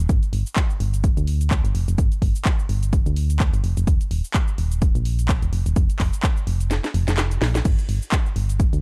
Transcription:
0.09 0.20 G1 loud
0.09 kick loud
0.09 closed hi-hat medium
0.09 shaker medium
0.23 closed hi-hat soft
0.23 shaker soft
0.33 0.44 G1 medium
0.33 open hi-hat loud
0.46 shaker medium
0.56 kick loud
0.56 clap loud
0.56 closed hi-hat medium
0.56 shaker medium
0.70 shaker soft
0.80 1.13 G1 medium
0.80 open hi-hat loud
0.94 closed hi-hat soft
0.94 shaker medium
1.04 kick loud
1.04 closed hi-hat medium
1.04 shaker medium
1.17 1.64 D2 medium
1.17 closed hi-hat soft
1.17 shaker soft
1.27 open hi-hat loud
1.41 closed hi-hat soft
1.41 shaker medium
1.51 kick loud
1.51 clap loud
1.51 closed hi-hat medium
1.51 shaker medium
1.64 1.73 G1 medium
1.64 closed hi-hat medium
1.64 shaker soft
1.75 1.86 F1 medium
1.75 open hi-hat medium
1.88 1.96 F1 medium
1.88 closed hi-hat soft
1.88 shaker medium
1.98 2.09 G1 loud
1.98 kick loud
1.98 closed hi-hat medium
1.98 shaker medium
2.12 closed hi-hat soft
2.12 shaker soft
2.22 2.33 G1 medium
2.22 kick medium
2.22 open hi-hat loud
2.36 shaker medium
2.45 kick loud
2.45 clap loud
2.45 closed hi-hat medium
2.45 shaker medium
2.59 shaker soft
2.69 3.02 G1 medium
2.69 open hi-hat medium
2.83 closed hi-hat soft
2.83 shaker medium
2.93 kick loud
2.93 closed hi-hat medium
2.93 shaker medium
3.06 3.53 D2 medium
3.06 closed hi-hat soft
3.06 shaker soft
3.16 open hi-hat loud
3.30 closed hi-hat soft
3.30 shaker medium
3.40 kick loud
3.40 clap loud
3.40 closed hi-hat medium
3.40 shaker medium
3.54 3.62 G1 medium
3.54 closed hi-hat medium
3.54 shaker soft
3.64 3.75 F1 medium
3.64 open hi-hat medium
3.77 3.85 F1 medium
3.77 closed hi-hat medium
3.77 shaker medium
3.87 3.98 D#1 loud
3.87 kick loud
3.87 closed hi-hat medium
3.87 shaker medium
4.01 closed hi-hat soft
4.01 shaker soft
4.11 4.22 D#1 medium
4.11 open hi-hat loud
4.24 shaker medium
4.34 kick loud
4.34 clap loud
4.34 closed hi-hat medium
4.34 shaker medium
4.48 shaker soft
4.58 4.91 D#1 medium
4.58 open hi-hat medium
4.72 closed hi-hat soft
4.72 shaker medium
4.82 kick loud
4.82 closed hi-hat medium
4.82 shaker medium
4.95 5.42 A#1 medium
4.95 closed hi-hat soft
4.95 shaker soft
5.05 open hi-hat loud
5.19 closed hi-hat soft
5.19 shaker medium
5.29 kick loud
5.29 clap loud
5.29 closed hi-hat medium
5.29 shaker medium
5.42 5.51 D#1 medium
5.42 closed hi-hat medium
5.42 shaker soft
5.53 5.64 F1 medium
5.53 open hi-hat medium
5.66 5.74 D#1 medium
5.66 closed hi-hat medium
5.66 shaker medium
5.76 5.87 F1 loud
5.76 kick loud
5.76 closed hi-hat medium
5.76 shaker medium
5.90 closed hi-hat soft
5.90 shaker soft
5.99 6.11 F1 medium
5.99 kick medium
5.99 clap medium
5.99 open hi-hat loud
6.13 closed hi-hat soft
6.13 shaker medium
6.23 kick loud
6.23 clap loud
6.23 closed hi-hat medium
6.23 shaker medium
6.37 shaker soft
6.47 6.80 F1 medium
6.47 open hi-hat medium
6.61 closed hi-hat soft
6.61 shaker medium
6.71 snare medium
6.71 closed hi-hat medium
6.71 shaker medium
6.84 snare medium
6.84 closed hi-hat soft
6.84 shaker soft
6.94 7.05 F1 medium
6.94 open hi-hat loud
7.08 7.39 F1 medium
7.08 snare medium
7.08 closed hi-hat soft
7.08 shaker medium
7.17 snare medium
7.17 clap loud
7.17 closed hi-hat medium
7.17 shaker medium
7.31 closed hi-hat medium
7.31 shaker soft
7.42 7.61 A#1 medium
7.42 snare medium
7.42 open hi-hat medium
7.55 snare medium
7.55 closed hi-hat medium
7.55 shaker medium
7.65 7.76 G1 loud
7.65 kick loud
7.65 closed hi-hat medium
7.65 crash medium
7.65 shaker medium
7.79 closed hi-hat soft
7.79 shaker soft
7.89 8.00 G1 medium
7.89 open hi-hat loud
8.02 shaker medium
8.12 kick loud
8.12 clap loud
8.12 closed hi-hat medium
8.12 shaker medium
8.26 shaker soft
8.36 8.69 G1 medium
8.36 open hi-hat medium
8.50 closed hi-hat soft
8.50 shaker medium
8.60 kick loud
8.60 closed hi-hat medium
8.60 shaker medium
8.73 8.81 D2 medium
8.73 closed hi-hat soft
8.73 shaker soft

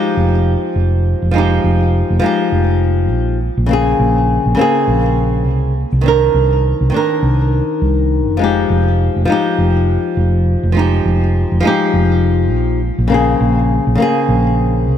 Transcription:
0.00 1.30 F3 medium
0.00 1.31 G#3 medium
0.00 1.32 D#4 medium
0.00 1.33 G4 medium
0.17 0.54 F1 medium
0.76 1.13 F1 medium
1.22 1.57 F1 medium
1.31 2.18 F3 medium
1.31 2.19 G#3 medium
1.36 2.20 D#4 medium
1.36 2.21 G4 medium
1.64 2.01 F1 medium
2.10 2.19 F1 medium
2.19 3.37 F3 medium
2.19 3.38 G#3 medium
2.24 3.39 D#4 medium
2.24 3.40 G4 medium
2.52 3.11 F1 medium
3.11 3.49 A#1 medium
3.57 3.93 A#1 medium
3.66 4.53 C#3 medium
3.66 4.55 A#3 medium
3.71 4.56 C4 medium
3.71 4.57 G#4 medium
3.99 4.37 A#1 medium
4.46 4.54 A#1 medium
4.55 5.73 C#3 medium
4.55 5.74 A#3 medium
4.59 5.75 C4 medium
4.59 5.76 G#4 loud
4.88 5.46 A#1 medium
5.46 5.84 C2 medium
5.92 6.28 C2 medium
6.01 6.88 D#3 medium
6.01 6.89 C4 medium
6.06 6.91 D4 medium
6.06 6.92 A#4 medium
6.34 6.72 C2 medium
6.81 6.89 C2 medium
6.90 8.36 D#3 medium
6.90 8.37 C4 medium
6.94 8.38 D4 medium
6.94 8.39 A#4 loud
7.23 7.60 C2 medium
7.82 8.28 C2 medium
8.28 8.63 F1 medium
8.37 9.24 F3 medium
8.37 9.25 G#3 medium
8.41 9.26 D#4 medium
8.41 9.27 G4 medium
8.70 9.07 F1 medium
9.16 9.25 F1 medium
9.25 10.71 F3 medium
9.25 10.72 G#3 medium
9.30 10.73 D#4 medium
9.30 10.74 G4 loud
9.58 9.96 F1 medium
10.17 10.54 F1 medium
10.63 10.99 F1 medium
10.72 11.59 F3 medium
10.72 11.60 G#3 medium
10.77 11.61 D#4 medium
10.77 11.63 G4 medium
11.05 11.43 F1 loud
11.52 11.60 F1 medium
11.60 12.78 F3 medium
11.60 12.79 G#3 medium
11.65 12.81 D#4 medium
11.65 12.82 G4 medium
11.93 12.52 F1 medium
12.52 12.90 A#1 medium
12.98 13.34 A#1 medium
13.08 13.94 C#3 medium
13.08 13.96 A#3 medium
13.12 13.97 C4 medium
13.12 13.98 G#4 medium
13.40 13.78 A#1 loud
13.87 13.95 A#1 medium
13.95 14.98 C#3 medium
13.95 14.98 A#3 medium
14.00 14.98 C4 medium
14.00 14.98 G#4 loud
14.28 14.87 A#1 medium
14.87 14.98 C2 medium

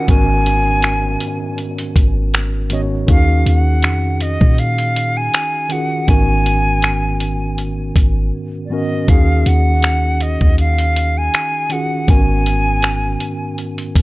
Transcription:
0.00 0.09 C#4 medium
0.00 0.10 F#4 medium
0.00 0.11 F#5 medium
0.00 downlifter medium
0.07 1.17 G#1 loud
0.07 1.16 G#2 medium
0.07 1.16 D#3 medium
0.07 1.17 B3 medium
0.07 1.17 C#4 medium
0.07 1.18 F#4 medium
0.07 1.59 G#5 loud
0.07 kick loud
0.07 closed hi-hat medium
0.11 1.18 A#4 medium
0.46 closed hi-hat medium
0.82 finger snap loud
0.82 closed hi-hat medium
1.20 closed hi-hat medium
1.58 closed hi-hat soft
1.78 closed hi-hat medium
1.96 3.04 G#1 loud
1.96 kick medium
1.96 closed hi-hat medium
2.34 finger snap loud
2.34 closed hi-hat medium
2.69 2.98 G#2 medium
2.69 2.98 D#3 medium
2.69 2.99 B3 medium
2.69 2.99 C#4 medium
2.69 3.00 F#4 medium
2.69 2.81 D#5 medium
2.69 closed hi-hat medium
2.73 3.00 C#5 medium
3.06 3.44 D#2 loud
3.06 4.16 D#3 medium
3.06 4.16 C#4 medium
3.06 4.17 D#4 medium
3.06 4.18 F#4 medium
3.06 3.48 F5 medium
3.06 kick loud
3.06 closed hi-hat medium
3.11 4.18 G#4 medium
3.46 3.85 D#2 loud
3.46 4.24 F#5 medium
3.46 closed hi-hat medium
3.83 4.38 F2 loud
3.83 finger snap loud
3.83 closed hi-hat medium
4.21 4.61 D#5 medium
4.21 closed hi-hat medium
4.41 5.30 A#2 loud
4.41 kick loud
4.58 5.19 F5 loud
4.58 closed hi-hat medium
4.78 closed hi-hat medium
4.96 closed hi-hat medium
5.17 5.74 G#5 loud
5.34 finger snap loud
5.34 closed hi-hat medium
5.69 5.98 D#3 medium
5.69 5.98 C#4 medium
5.69 5.99 F4 medium
5.69 5.99 F#4 medium
5.69 6.11 F#5 loud
5.69 closed hi-hat medium
5.73 6.00 G#4 medium
6.06 7.92 G#1 loud
6.06 7.16 G#2 medium
6.06 7.16 D#3 medium
6.06 7.17 B3 medium
6.06 7.17 C#4 medium
6.06 7.18 F#4 medium
6.06 7.59 G#5 loud
6.06 kick loud
6.06 closed hi-hat medium
6.11 7.18 A#4 medium
6.46 closed hi-hat medium
6.82 finger snap loud
6.82 closed hi-hat medium
7.20 closed hi-hat medium
7.58 closed hi-hat medium
7.96 8.32 G#1 loud
7.96 kick medium
7.96 closed hi-hat medium
8.65 8.98 G#2 medium
8.65 8.74 D5 medium
8.70 8.98 D#3 medium
8.70 8.99 B3 medium
8.70 8.99 C#4 medium
8.70 9.00 F#4 medium
8.70 9.00 A#4 medium
8.70 9.11 D#5 medium
9.07 9.44 D#2 loud
9.07 10.16 D#3 medium
9.07 10.17 C#4 medium
9.07 10.17 D#4 medium
9.07 10.18 F#4 medium
9.07 9.49 F5 medium
9.07 kick loud
9.07 closed hi-hat medium
9.11 10.18 G#4 medium
9.46 10.37 D#2 loud
9.46 10.24 F#5 medium
9.46 closed hi-hat medium
9.82 finger snap loud
9.82 closed hi-hat medium
10.20 10.59 D#5 medium
10.20 closed hi-hat medium
10.41 11.30 D#2 medium
10.41 kick loud
10.58 11.19 F5 loud
10.58 closed hi-hat soft
10.78 closed hi-hat medium
10.96 closed hi-hat medium
11.18 11.74 G#5 loud
11.34 finger snap loud
11.34 closed hi-hat medium
11.69 11.98 D#3 medium
11.69 11.98 C#4 medium
11.69 11.99 F4 medium
11.69 11.99 F#4 medium
11.69 12.12 F#5 loud
11.69 closed hi-hat medium
11.73 12.00 G#4 medium
12.07 13.17 G#1 loud
12.07 13.16 G#2 medium
12.07 13.16 D#3 medium
12.07 13.17 B3 medium
12.07 13.17 C#4 medium
12.07 13.18 F#4 medium
12.07 13.59 G#5 loud
12.07 kick loud
12.07 closed hi-hat medium
12.11 13.18 A#4 medium
12.46 closed hi-hat medium
12.82 finger snap loud
12.82 closed hi-hat medium
13.20 closed hi-hat medium
13.58 closed hi-hat medium
13.78 closed hi-hat medium
13.96 14.02 G#1 loud
13.96 kick medium
13.96 closed hi-hat medium

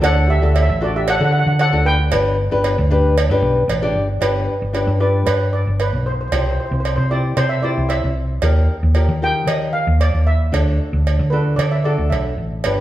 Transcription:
0.01 0.39 D2 loud
0.01 0.26 D4 medium
0.01 0.26 F#4 medium
0.01 0.26 A4 medium
0.01 0.27 A4 medium
0.01 0.30 F#5 loud
0.01 cowbell medium
0.28 0.35 G4 medium
0.28 0.37 E5 medium
0.38 0.66 D4 medium
0.38 0.44 E5 medium
0.42 0.67 D2 medium
0.42 0.66 F#4 medium
0.42 0.66 A4 medium
0.42 0.52 E5 medium
0.55 0.61 E5 medium
0.55 cowbell medium
0.62 0.68 E5 medium
0.69 1.17 A1 medium
0.69 0.75 E5 medium
0.81 1.05 D4 medium
0.81 1.05 F#4 medium
0.81 0.94 F#4 medium
0.81 1.05 A4 medium
0.81 0.97 D5 medium
0.96 1.07 G4 medium
0.96 1.09 E5 medium
1.08 1.16 A4 medium
1.08 1.14 F#5 loud
1.08 cowbell medium
1.15 1.22 F#5 medium
1.20 1.45 D3 medium
1.20 1.52 D4 medium
1.20 1.52 F#4 medium
1.20 1.52 A4 medium
1.25 1.30 F#5 medium
1.33 1.38 F#5 medium
1.39 1.46 F#5 medium
1.47 1.71 D3 medium
1.47 1.53 F#5 medium
1.59 1.85 A4 medium
1.59 1.85 F#5 loud
1.59 cowbell medium
1.73 2.09 D2 medium
1.73 1.96 D4 medium
1.73 1.97 F#4 medium
1.73 1.97 A4 medium
1.85 3.92 B4 medium
1.85 3.92 G5 loud
2.11 2.49 G1 loud
2.11 2.35 D4 medium
2.11 2.36 G4 medium
2.11 2.36 B4 medium
2.11 cowbell medium
2.51 2.76 G1 medium
2.51 2.75 D4 medium
2.51 2.75 G4 medium
2.51 2.75 B4 loud
2.64 cowbell medium
2.78 3.27 D2 medium
2.91 3.15 D4 medium
2.91 3.15 G4 medium
2.91 3.15 B4 loud
3.18 cowbell medium
3.30 3.42 G2 medium
3.30 3.62 D4 medium
3.30 3.62 G4 medium
3.30 3.62 B4 loud
3.42 3.66 B1 loud
3.68 3.92 A1 medium
3.68 cowbell medium
3.82 4.06 D4 medium
3.82 4.06 G4 medium
3.82 4.06 D5 loud
3.95 4.19 G1 medium
4.21 4.46 G1 medium
4.21 4.53 D4 medium
4.21 4.54 G4 medium
4.21 4.54 B4 medium
4.21 cowbell medium
4.62 4.86 G1 medium
4.73 4.90 D4 medium
4.73 4.91 G4 medium
4.73 4.90 B4 medium
4.73 cowbell medium
4.87 5.24 G2 loud
5.00 5.64 D4 medium
5.00 5.64 G4 medium
5.00 5.64 B4 medium
5.00 5.28 D5 medium
5.26 5.64 G2 medium
5.26 5.51 B4 medium
5.26 cowbell medium
5.53 5.81 D5 medium
5.67 5.92 G1 medium
5.80 6.07 B4 medium
5.80 cowbell medium
5.93 6.29 B1 medium
6.06 6.11 C5 medium
6.12 6.20 C5 medium
6.21 6.26 C5 medium
6.28 6.34 C5 medium
6.32 6.57 C2 medium
6.32 6.80 E4 medium
6.32 6.80 G4 medium
6.32 6.80 C5 medium
6.32 6.44 C5 medium
6.32 cowbell medium
6.46 6.50 C5 medium
6.51 6.59 C5 medium
6.60 6.65 C5 medium
6.66 6.73 C5 medium
6.71 6.96 C2 medium
6.71 6.79 C5 soft
6.80 6.88 C5 medium
6.85 6.95 C5 medium
6.85 cowbell medium
6.96 7.34 C3 loud
6.96 7.04 C5 medium
7.11 7.43 E4 medium
7.11 7.43 G4 medium
7.11 7.43 C5 medium
7.11 7.36 D5 medium
7.37 7.74 C3 medium
7.37 7.43 C5 loud
7.37 cowbell medium
7.49 7.56 E5 loud
7.63 8.12 E4 medium
7.63 8.12 G4 medium
7.63 8.12 C5 medium
7.63 7.91 D5 medium
7.77 8.02 C2 medium
7.89 8.39 E5 medium
7.89 cowbell medium
8.04 8.40 C2 medium
8.42 8.67 D#2 medium
8.42 8.75 D#4 medium
8.42 8.75 G4 medium
8.42 8.75 A#4 medium
8.42 cowbell medium
8.83 9.07 D#2 medium
8.95 9.12 D#4 medium
8.95 9.12 G4 medium
8.95 9.12 A#4 medium
8.95 cowbell medium
9.08 9.45 D#3 loud
9.22 9.86 D#4 medium
9.22 9.86 G4 medium
9.22 9.86 A#4 medium
9.22 9.50 G5 loud
9.47 9.85 D#3 medium
9.47 9.73 D#5 medium
9.47 cowbell medium
9.73 9.98 F5 medium
9.87 10.12 D#2 medium
10.01 10.28 D5 medium
10.01 cowbell medium
10.13 10.50 D#2 medium
10.27 11.36 E5 loud
10.52 10.78 D2 medium
10.52 11.01 D4 medium
10.52 11.01 F#4 medium
10.52 11.01 A4 medium
10.52 cowbell medium
10.93 11.18 D2 medium
11.07 cowbell medium
11.19 11.56 D3 loud
11.30 11.65 D4 medium
11.30 11.65 F#4 medium
11.30 11.65 A4 medium
11.30 11.59 B4 medium
11.56 11.96 D3 medium
11.56 11.72 D5 medium
11.56 cowbell medium
11.72 11.86 E5 medium
11.84 12.33 D4 medium
11.84 12.33 F#4 medium
11.84 12.33 A4 medium
11.84 12.09 D5 medium
11.98 12.11 D2 medium
12.10 12.35 B1 medium
12.10 12.60 E5 medium
12.10 cowbell medium
12.38 12.62 A1 medium
12.64 12.80 G1 medium
12.64 12.80 D4 medium
12.64 12.80 G4 medium
12.64 12.80 B4 medium
12.64 cowbell medium

